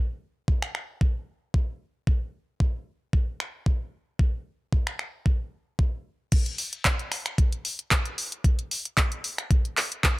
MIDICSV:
0, 0, Header, 1, 2, 480
1, 0, Start_track
1, 0, Tempo, 530973
1, 1875, Time_signature, 4, 2, 24, 8
1, 9216, End_track
2, 0, Start_track
2, 0, Title_t, "Drums"
2, 434, Note_on_c, 9, 36, 93
2, 524, Note_off_c, 9, 36, 0
2, 564, Note_on_c, 9, 26, 77
2, 655, Note_off_c, 9, 26, 0
2, 677, Note_on_c, 9, 26, 55
2, 767, Note_off_c, 9, 26, 0
2, 914, Note_on_c, 9, 36, 101
2, 1004, Note_off_c, 9, 36, 0
2, 1393, Note_on_c, 9, 36, 86
2, 1484, Note_off_c, 9, 36, 0
2, 1873, Note_on_c, 9, 36, 100
2, 1963, Note_off_c, 9, 36, 0
2, 2352, Note_on_c, 9, 36, 92
2, 2443, Note_off_c, 9, 36, 0
2, 2832, Note_on_c, 9, 36, 97
2, 2922, Note_off_c, 9, 36, 0
2, 3075, Note_on_c, 9, 26, 60
2, 3166, Note_off_c, 9, 26, 0
2, 3311, Note_on_c, 9, 36, 87
2, 3401, Note_off_c, 9, 36, 0
2, 3791, Note_on_c, 9, 36, 106
2, 3881, Note_off_c, 9, 36, 0
2, 4271, Note_on_c, 9, 36, 90
2, 4362, Note_off_c, 9, 36, 0
2, 4402, Note_on_c, 9, 26, 76
2, 4492, Note_off_c, 9, 26, 0
2, 4513, Note_on_c, 9, 26, 57
2, 4604, Note_off_c, 9, 26, 0
2, 4753, Note_on_c, 9, 36, 98
2, 4843, Note_off_c, 9, 36, 0
2, 5233, Note_on_c, 9, 36, 90
2, 5324, Note_off_c, 9, 36, 0
2, 5713, Note_on_c, 9, 42, 69
2, 5713, Note_on_c, 9, 49, 102
2, 5714, Note_on_c, 9, 36, 115
2, 5804, Note_off_c, 9, 36, 0
2, 5804, Note_off_c, 9, 42, 0
2, 5804, Note_off_c, 9, 49, 0
2, 5841, Note_on_c, 9, 42, 41
2, 5932, Note_off_c, 9, 42, 0
2, 5951, Note_on_c, 9, 46, 99
2, 6042, Note_off_c, 9, 46, 0
2, 6082, Note_on_c, 9, 42, 44
2, 6172, Note_off_c, 9, 42, 0
2, 6192, Note_on_c, 9, 39, 127
2, 6193, Note_on_c, 9, 42, 72
2, 6194, Note_on_c, 9, 36, 102
2, 6282, Note_off_c, 9, 39, 0
2, 6284, Note_off_c, 9, 36, 0
2, 6284, Note_off_c, 9, 42, 0
2, 6322, Note_on_c, 9, 42, 40
2, 6413, Note_off_c, 9, 42, 0
2, 6433, Note_on_c, 9, 26, 65
2, 6433, Note_on_c, 9, 46, 107
2, 6523, Note_off_c, 9, 26, 0
2, 6523, Note_off_c, 9, 46, 0
2, 6561, Note_on_c, 9, 26, 69
2, 6561, Note_on_c, 9, 42, 42
2, 6651, Note_off_c, 9, 26, 0
2, 6651, Note_off_c, 9, 42, 0
2, 6674, Note_on_c, 9, 36, 121
2, 6675, Note_on_c, 9, 42, 72
2, 6764, Note_off_c, 9, 36, 0
2, 6765, Note_off_c, 9, 42, 0
2, 6802, Note_on_c, 9, 42, 41
2, 6893, Note_off_c, 9, 42, 0
2, 6915, Note_on_c, 9, 46, 107
2, 7005, Note_off_c, 9, 46, 0
2, 7042, Note_on_c, 9, 42, 42
2, 7132, Note_off_c, 9, 42, 0
2, 7151, Note_on_c, 9, 39, 124
2, 7153, Note_on_c, 9, 42, 69
2, 7154, Note_on_c, 9, 36, 102
2, 7242, Note_off_c, 9, 39, 0
2, 7243, Note_off_c, 9, 42, 0
2, 7244, Note_off_c, 9, 36, 0
2, 7281, Note_on_c, 9, 42, 43
2, 7372, Note_off_c, 9, 42, 0
2, 7395, Note_on_c, 9, 46, 102
2, 7485, Note_off_c, 9, 46, 0
2, 7522, Note_on_c, 9, 42, 41
2, 7613, Note_off_c, 9, 42, 0
2, 7633, Note_on_c, 9, 36, 118
2, 7635, Note_on_c, 9, 42, 69
2, 7724, Note_off_c, 9, 36, 0
2, 7726, Note_off_c, 9, 42, 0
2, 7763, Note_on_c, 9, 42, 41
2, 7853, Note_off_c, 9, 42, 0
2, 7877, Note_on_c, 9, 46, 110
2, 7967, Note_off_c, 9, 46, 0
2, 8004, Note_on_c, 9, 42, 44
2, 8094, Note_off_c, 9, 42, 0
2, 8113, Note_on_c, 9, 36, 113
2, 8113, Note_on_c, 9, 39, 127
2, 8115, Note_on_c, 9, 42, 71
2, 8203, Note_off_c, 9, 36, 0
2, 8204, Note_off_c, 9, 39, 0
2, 8205, Note_off_c, 9, 42, 0
2, 8242, Note_on_c, 9, 42, 41
2, 8332, Note_off_c, 9, 42, 0
2, 8354, Note_on_c, 9, 46, 105
2, 8445, Note_off_c, 9, 46, 0
2, 8483, Note_on_c, 9, 26, 65
2, 8483, Note_on_c, 9, 42, 42
2, 8573, Note_off_c, 9, 26, 0
2, 8573, Note_off_c, 9, 42, 0
2, 8593, Note_on_c, 9, 36, 121
2, 8593, Note_on_c, 9, 42, 65
2, 8684, Note_off_c, 9, 36, 0
2, 8684, Note_off_c, 9, 42, 0
2, 8724, Note_on_c, 9, 42, 37
2, 8814, Note_off_c, 9, 42, 0
2, 8834, Note_on_c, 9, 39, 68
2, 8835, Note_on_c, 9, 46, 116
2, 8924, Note_off_c, 9, 39, 0
2, 8926, Note_off_c, 9, 46, 0
2, 8965, Note_on_c, 9, 42, 40
2, 9056, Note_off_c, 9, 42, 0
2, 9074, Note_on_c, 9, 36, 110
2, 9076, Note_on_c, 9, 39, 127
2, 9077, Note_on_c, 9, 42, 65
2, 9164, Note_off_c, 9, 36, 0
2, 9166, Note_off_c, 9, 39, 0
2, 9168, Note_off_c, 9, 42, 0
2, 9216, End_track
0, 0, End_of_file